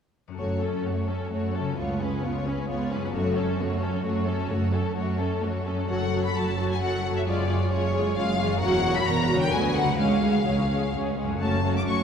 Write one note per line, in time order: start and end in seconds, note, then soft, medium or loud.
0.28 1.79 F#2 soft
0.28 1.63 C#4 soft
0.32 1.75 F#4 soft
0.32 1.77 A4 soft
0.39 0.77 F#1 soft
0.39 0.80 F#2 soft
0.39 0.60 A3 soft
0.39 0.60 F#4 soft
0.39 0.60 C#5 soft
0.62 0.85 C#4 soft
0.62 0.85 A4 soft
0.85 1.26 F#2 soft
0.85 1.08 A3 soft
0.85 1.09 F#4 soft
0.85 1.09 C#5 soft
1.08 1.31 C#4 soft
1.08 1.31 A4 soft
1.08 1.32 A4 soft
1.32 1.72 F#2 soft
1.32 1.53 A3 soft
1.32 1.53 F#4 soft
1.32 1.53 C#5 soft
1.55 1.77 C#4 soft
1.55 1.78 A4 soft
1.60 3.06 C#3 soft
1.64 2.99 C#4 soft
1.68 3.11 F4 soft
1.73 3.13 B4 soft
1.77 2.18 C#2 soft
1.77 2.16 C#2 soft
1.77 1.99 B3 soft
1.77 1.99 F4 soft
1.77 1.99 C#5 soft
2.01 2.23 C#4 soft
2.01 2.23 G#4 soft
2.01 2.24 B4 soft
2.23 2.63 C#2 soft
2.23 2.46 B3 soft
2.23 2.46 F4 soft
2.23 2.46 C#5 soft
2.46 2.68 C#4 soft
2.46 2.68 G#4 soft
2.46 2.69 B4 soft
2.69 3.08 C#2 soft
2.69 2.89 B3 soft
2.69 2.89 F4 soft
2.69 2.90 C#5 soft
2.91 3.14 C#4 soft
2.91 3.14 G#4 soft
2.91 3.14 B4 soft
2.95 5.70 F#2 soft
3.00 5.74 C#4 soft
3.05 5.79 F#4 soft
3.09 5.83 A4 soft
3.14 3.51 F#1 medium
3.14 3.54 F#2 soft
3.14 3.35 A3 soft
3.14 3.34 F#4 soft
3.14 3.35 C#5 soft
3.36 3.59 C#4 soft
3.36 3.59 A4 soft
3.59 3.99 F#2 soft
3.59 3.81 A3 soft
3.59 3.81 F#4 soft
3.59 3.82 C#5 soft
3.81 4.04 C#4 soft
3.81 4.04 A4 soft
4.04 4.44 F#2 medium
4.04 4.25 A3 soft
4.04 4.25 F#4 soft
4.04 4.25 C#5 soft
4.26 4.49 C#4 soft
4.26 4.49 A4 soft
4.26 4.50 A4 soft
4.49 4.87 F#1 medium
4.49 4.90 F#2 soft
4.49 4.72 A3 soft
4.49 4.72 F#4 soft
4.49 4.72 C#5 soft
4.72 4.95 C#4 soft
4.72 4.95 A4 soft
4.72 4.96 A4 soft
4.95 5.36 F#2 soft
4.95 5.16 A3 soft
4.95 5.17 F#4 soft
4.95 5.17 C#5 soft
5.18 5.41 C#4 soft
5.18 5.41 A4 soft
5.18 5.42 A4 soft
5.41 5.84 F#2 soft
5.41 5.65 A3 soft
5.41 5.65 F#4 soft
5.41 5.66 C#5 soft
5.65 5.89 C#4 soft
5.65 5.89 A4 soft
5.65 5.88 A4 soft
5.71 7.08 F#2 soft
5.75 7.12 C#4 soft
5.80 7.24 F#4 soft
5.84 7.26 A4 soft
5.89 6.30 F#1 soft
5.89 6.30 F#2 soft
5.89 6.11 F#3 soft
5.89 6.11 F#4 soft
5.89 6.11 A4 soft
5.89 6.11 C#5 soft
5.89 6.22 F#5 soft
6.12 6.34 F#3 soft
6.12 6.34 F#4 soft
6.12 6.33 A4 soft
6.12 6.33 C#5 soft
6.25 6.36 B5 soft
6.34 6.76 F#1 soft
6.34 6.76 F#2 soft
6.34 6.57 F#3 soft
6.34 6.57 F#4 soft
6.34 6.56 A4 soft
6.34 6.57 C#5 soft
6.34 6.70 A5 soft
6.58 6.81 F#3 soft
6.58 6.81 F#4 soft
6.58 6.80 A4 soft
6.58 6.79 C#5 soft
6.72 6.82 G#5 soft
6.80 7.21 F#1 soft
6.80 7.21 F#2 soft
6.80 7.03 F#3 soft
6.80 7.03 F#4 soft
6.80 7.02 A4 soft
6.80 7.02 C#5 soft
6.80 7.15 F#5 medium
7.03 7.26 F#3 soft
7.03 7.26 F#4 soft
7.03 7.26 A4 soft
7.03 7.25 C#5 soft
7.09 8.54 F#2 soft
7.13 8.47 C#4 soft
7.13 7.21 E5 soft
7.18 8.59 F4 soft
7.22 7.66 F#2 soft
7.22 8.61 G#4 soft
7.26 7.66 F#1 soft
7.26 7.49 G#3 soft
7.26 7.49 F4 soft
7.26 7.48 G#4 soft
7.26 7.48 C#5 soft
7.26 7.71 D5 soft
7.49 7.71 G#3 soft
7.49 7.71 F4 soft
7.49 7.69 G#4 soft
7.49 7.70 C#5 soft
7.71 8.11 F#1 soft
7.71 8.11 F#2 soft
7.71 7.93 G#3 soft
7.71 7.93 F4 soft
7.71 7.92 G#4 soft
7.71 7.92 C#5 soft
7.71 8.16 C#5 medium
7.93 8.15 G#3 soft
7.93 8.15 F4 soft
7.93 8.14 G#4 soft
7.93 8.15 C#5 soft
8.16 8.56 F#1 soft
8.16 8.56 F#2 medium
8.16 8.38 G#3 soft
8.16 8.38 F4 soft
8.16 8.37 G#4 soft
8.16 8.37 C#5 soft
8.16 8.60 F5 medium
8.38 8.61 G#3 soft
8.38 8.61 F4 soft
8.38 8.61 G#4 soft
8.38 8.60 C#5 soft
8.44 9.45 E3 soft
8.48 9.48 C#4 soft
8.52 9.42 F#4 soft
8.57 9.01 E2 medium
8.57 9.52 A#4 soft
8.57 8.83 A#4 medium
8.57 8.83 C#5 medium
8.61 9.01 E1 medium
8.61 8.83 F#3 medium
8.61 8.83 F#4 medium
8.61 8.94 F#5 medium
8.84 9.06 F#3 soft
8.84 9.05 F#4 soft
8.84 9.06 A#4 soft
8.84 9.06 C#5 soft
8.96 9.07 B5 medium
9.06 9.47 E1 medium
9.06 9.47 E2 medium
9.06 9.29 F#3 soft
9.06 9.29 F#4 soft
9.06 9.29 A#4 soft
9.06 9.28 C#5 soft
9.06 9.41 A#5 medium
9.30 9.52 F#3 soft
9.30 9.52 F#4 soft
9.30 9.52 A#4 soft
9.30 9.52 C#5 soft
9.34 9.92 D3 soft
9.39 9.94 B3 soft
9.39 9.52 G5 medium
9.43 9.96 F#4 soft
9.48 9.99 B4 soft
9.52 9.94 D2 medium
9.52 9.75 F#3 soft
9.52 9.75 F#4 soft
9.52 9.75 B4 soft
9.52 9.75 G#5 medium
9.75 9.99 F#3 soft
9.75 9.99 F#4 soft
9.75 9.99 B4 soft
9.75 9.99 F#5 medium
9.81 11.34 C#3 soft
9.85 11.36 G#3 soft
9.90 11.38 G#4 soft
9.94 11.35 C#5 soft
9.99 10.41 C#2 soft
9.99 10.41 C#2 medium
9.99 10.22 G#3 soft
9.99 10.22 C#4 soft
9.99 10.21 G#4 soft
9.99 10.21 C#5 soft
9.99 10.92 F5 medium
10.22 10.45 G#3 soft
10.22 10.45 C#4 soft
10.22 10.44 G#4 soft
10.22 10.44 C#5 soft
10.46 10.88 C#2 soft
10.46 10.68 G#3 soft
10.46 10.69 C#4 soft
10.46 10.68 G#4 soft
10.46 10.68 C#5 soft
10.69 10.92 G#3 soft
10.69 10.92 C#4 soft
10.69 10.92 G#4 soft
10.69 10.92 C#5 soft
10.93 11.36 C#2 soft
10.93 11.16 G#3 soft
10.93 11.15 C#4 soft
10.93 11.16 G#4 soft
10.93 11.16 C#5 soft
11.17 11.40 G#3 soft
11.17 11.39 C#4 soft
11.17 11.40 G#4 soft
11.17 11.39 C#5 soft
11.23 12.03 F#2 soft
11.28 12.03 A3 soft
11.32 12.03 F#4 soft
11.37 12.03 C#5 soft
11.41 11.82 F#1 soft
11.41 11.82 F#2 soft
11.41 11.63 A3 soft
11.41 11.63 C#4 soft
11.41 11.63 F#4 soft
11.41 11.63 C#5 soft
11.41 11.74 A5 medium
11.64 11.86 A3 soft
11.64 11.86 C#4 soft
11.64 11.85 F#4 soft
11.64 11.84 C#5 soft
11.77 11.82 D6 medium
11.86 12.03 F#1 soft
11.86 12.03 F#2 soft
11.86 12.03 A3 soft
11.86 12.03 C#4 soft
11.86 12.03 F#4 soft
11.86 12.03 C#5 soft
11.86 12.03 C#6 soft